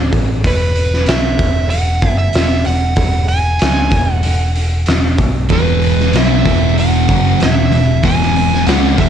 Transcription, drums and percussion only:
0.13 kick, open hi-hat
0.44 kick, open hi-hat
0.76 open hi-hat
0.94 snare
1.06 snare, open hi-hat
1.39 kick, open hi-hat
1.70 open hi-hat
2.02 kick, open hi-hat
2.33 snare, open hi-hat
2.65 open hi-hat
2.96 kick, open hi-hat
3.28 open hi-hat
3.59 snare, open hi-hat
3.91 kick, open hi-hat
4.23 open hi-hat
4.56 open hi-hat
4.86 snare, open hi-hat
5.18 kick, open hi-hat
5.49 kick, open hi-hat
5.82 open hi-hat
6.00 snare
6.13 snare, open hi-hat
6.45 kick, open hi-hat
6.78 open hi-hat
7.09 kick, open hi-hat
7.40 snare, open hi-hat
7.72 open hi-hat
8.03 kick, open hi-hat
8.22 snare
8.36 open hi-hat
8.54 snare
8.66 snare, open hi-hat
8.98 kick, open hi-hat

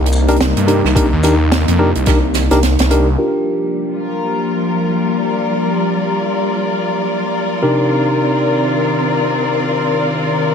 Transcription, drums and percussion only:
0.06 closed hi-hat
0.12 shaker
0.28 closed hi-hat
0.31 closed hi-hat
0.36 closed hi-hat
0.41 snare, closed hi-hat
0.57 closed hi-hat
0.68 closed hi-hat
0.85 snare
0.96 kick, closed hi-hat
1.23 closed hi-hat, shaker
1.52 snare, closed hi-hat
1.68 closed hi-hat
1.95 closed hi-hat
2.06 kick, snare, closed hi-hat
2.34 snare, closed hi-hat, shaker
2.51 snare, closed hi-hat
2.63 snare, closed hi-hat
2.79 snare, closed hi-hat
2.91 closed hi-hat

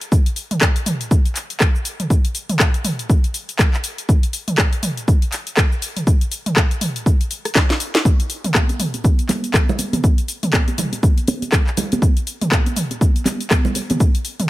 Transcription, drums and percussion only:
0.01 closed hi-hat, shaker
0.12 kick, shaker
0.26 closed hi-hat, shaker
0.36 open hi-hat, shaker
0.51 closed hi-hat, mid tom, shaker
0.61 kick, cross-stick, clap, shaker
0.76 closed hi-hat, shaker
0.86 mid tom, open hi-hat, shaker
1.01 closed hi-hat, shaker
1.11 kick, shaker
1.25 closed hi-hat, shaker
1.36 clap, open hi-hat, shaker
1.50 closed hi-hat, shaker
1.60 kick, cross-stick, clap, shaker
1.75 shaker
1.85 open hi-hat, shaker
2.00 closed hi-hat, mid tom, shaker
2.10 kick, shaker
2.25 closed hi-hat, shaker
2.35 open hi-hat, shaker
2.49 closed hi-hat, mid tom, shaker
2.60 kick, cross-stick, clap, shaker
2.74 closed hi-hat, shaker
2.84 mid tom, open hi-hat, shaker
2.99 closed hi-hat, shaker
3.10 kick, shaker
3.24 closed hi-hat, shaker
3.34 open hi-hat, shaker
3.49 closed hi-hat, shaker
3.59 kick, cross-stick, clap, shaker
3.74 clap, shaker
3.84 open hi-hat, shaker
3.98 closed hi-hat, shaker
4.09 kick, shaker
4.23 closed hi-hat, shaker
4.33 open hi-hat, shaker
4.48 closed hi-hat, mid tom, shaker
4.58 kick, cross-stick, clap, shaker
4.73 closed hi-hat, shaker
4.83 mid tom, open hi-hat, shaker
4.97 closed hi-hat, shaker
5.08 kick, shaker
5.22 closed hi-hat, shaker
5.32 clap, open hi-hat, shaker
5.47 closed hi-hat, shaker
5.57 kick, cross-stick, clap, shaker
5.72 shaker
5.82 open hi-hat, shaker
5.97 closed hi-hat, mid tom, shaker
6.07 kick, shaker
6.21 closed hi-hat, shaker
6.32 open hi-hat, shaker
6.46 closed hi-hat, mid tom, shaker
6.56 kick, cross-stick, clap, shaker
6.71 closed hi-hat, shaker
6.81 mid tom, open hi-hat, shaker
6.96 closed hi-hat, shaker
7.06 kick, shaker
7.21 closed hi-hat, shaker
7.31 open hi-hat, shaker
7.45 cross-stick, closed hi-hat, shaker
7.55 kick, cross-stick, snare, clap, shaker
7.70 snare, closed hi-hat, shaker
7.80 open hi-hat, shaker
7.95 snare, closed hi-hat, shaker
8.05 kick, muted conga, shaker
8.20 closed hi-hat, shaker
8.30 open hi-hat, shaker
8.44 closed hi-hat, mid tom, muted conga, shaker
8.55 kick, cross-stick, clap, high conga, shaker
8.69 closed hi-hat, muted conga, shaker
8.80 mid tom, open hi-hat, shaker
8.94 closed hi-hat, muted conga, shaker
9.04 kick, high conga, shaker
9.19 closed hi-hat, shaker
9.29 clap, open hi-hat, muted conga, high conga, low conga, shaker
9.44 closed hi-hat, shaker
9.54 kick, cross-stick, clap, muted conga, high conga, shaker
9.69 low conga, shaker
9.79 open hi-hat, muted conga, high conga, shaker
9.93 closed hi-hat, mid tom, high conga, shaker
10.04 kick, muted conga, shaker
10.18 closed hi-hat, shaker
10.28 open hi-hat, shaker
10.43 closed hi-hat, mid tom, muted conga, shaker
10.53 kick, cross-stick, clap, high conga, shaker
10.68 closed hi-hat, muted conga, shaker
10.78 mid tom, open hi-hat, low conga, shaker
10.92 closed hi-hat, muted conga, shaker
11.03 kick, high conga, shaker
11.18 closed hi-hat, shaker
11.28 open hi-hat, muted conga, high conga, shaker
11.42 closed hi-hat, high conga, shaker
11.52 kick, cross-stick, clap, muted conga, shaker
11.67 clap, shaker
11.77 open hi-hat, muted conga, high conga, low conga, shaker
11.92 closed hi-hat, high conga, shaker
12.02 kick, muted conga, shaker
12.17 closed hi-hat, shaker
12.27 open hi-hat, shaker
12.41 closed hi-hat, mid tom, muted conga, shaker
12.52 kick, cross-stick, clap, high conga, shaker
12.66 closed hi-hat, muted conga, shaker
12.76 mid tom, open hi-hat, shaker
12.91 closed hi-hat, muted conga, shaker
13.01 kick, high conga, shaker
13.16 closed hi-hat, shaker
13.25 clap, open hi-hat, muted conga, high conga, low conga, shaker
13.41 closed hi-hat, shaker
13.51 kick, cross-stick, clap, muted conga, high conga, shaker
13.65 low conga, shaker
13.75 open hi-hat, muted conga, high conga, shaker
13.90 closed hi-hat, mid tom, high conga, shaker
14.00 kick, muted conga, shaker
14.15 closed hi-hat, shaker
14.25 open hi-hat, shaker
14.40 closed hi-hat, mid tom, muted conga, shaker

